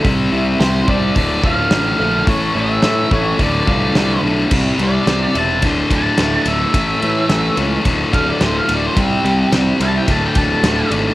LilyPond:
<<
  \new Staff \with { instrumentName = "Lead electric guitar" } { \time 4/4 \key d \minor \tempo 4 = 108 r4 c''8 d''4 f''4. | cis''8 e''4 cis''8 d''4. r8 | r8 d''4 a''8 c'''8 a''4 e''8~ | e''4. r4 f''16 d''16 c''16 f''16 d''16 c''16 |
g'4 r8 a''16 g''16 a''16 g''16 a''4 r8 | }
  \new Staff \with { instrumentName = "Clean electric guitar" } { \clef bass \time 4/4 \key d \minor c8 e'8 g'8 c'8 d,8 f'8 d8 a8 | a,8 cis'8 e'8 a8 d,8 f'8 d8 a8 | c8 g8 c'8 e'8 d,8 d8 a8 a,8 | a,8 e8 a8 cis'8 d,8 d8 a8 a,8 |
c8 g8 c'8 e'8 d,8 d8 a8 a,8 | }
  \new Staff \with { instrumentName = "Distorted electric guitar" } { \clef bass \time 4/4 \key d \minor <c g c'>8 <c g c'>8 <c g c'>8 <c g c'>8 <d, a, d>8 <d, a, d>8 <d, a, d>8 <d, a, d>8 | <a, e a>8 <a, e a>8 <a, e a>8 <a, e a>8 <d, a, d>8 <d, a, d>8 <d, a, d>8 <d, a, d>8 | <c g c'>8 <c g c'>8 <c g c'>8 <c g c'>8 <d, a, d>8 <d, a, d>8 <d, a, d>8 <d, a, d>8 | <a, e a>8 <a, e a>8 <a, e a>8 <a, e a>8 <d, a, d>8 <d, a, d>8 <d, a, d>8 <d, a, d>8 |
<c g c'>8 <c g c'>8 <c g c'>8 <c g c'>8 <d, a, d>8 <d, a, d>8 <d, a, d>8 <d, a, d>8 | }
  \new Staff \with { instrumentName = "Picked electric bass" } { \clef bass \time 4/4 \key d \minor c,8 c,8 c,8 c,8 d,,8 d,,8 a,,8 bes,,8 | a,,8 a,,8 a,8 a,,8 d,,8 c,8 c,8 b,,8 | c,8 c,8 c,8 e,,8 d,,8 d,,8 d,,8 d,,8 | a,,8 a,8 a,,8 cis,8 d,,8 d,,8 d,,8 d,,8 |
c,8 c,8 c,8 c,8 d,,8 d,,8 d,,8 gis,,8 | }
  \new DrumStaff \with { instrumentName = "Drums" } \drummode { \time 4/4 <hho bd>4 <hho sn>8 bd8 <hho bd>8 bd8 <hho sn>4 | <hho bd>4 <hho sn>8 bd8 <hho bd>8 bd8 <hho sn>4 | <cymc bd>8 cymr8 <cymr sn>8 cymr8 <bd cymr>8 <bd cymr>8 <cymr sn>8 cymr8 | <bd cymr>8 cymr8 <cymr sn>8 cymr8 <bd cymr>8 <bd cymr>8 <cymr sn>8 cymr8 |
<bd cymr>8 cymr8 <cymr sn>8 cymr8 <bd cymr>8 <bd cymr>8 <cymr sn>8 cymr8 | }
>>